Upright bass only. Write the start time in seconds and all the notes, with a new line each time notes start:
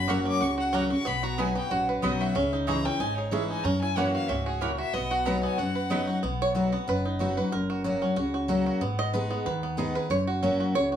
Already playing: F#1
0.42 C#2
1.06 B1
1.71 A#1
2.04 B1
2.36 C#2
3.00 G#1
3.64 F#2
4.29 C#2
4.94 B1
5.59 F#1
6.23 B1
6.88 F#1
7.53 F#1
8.17 C#2
8.81 G#1
9.46 D#2
10.10 F#1
10.75 C#2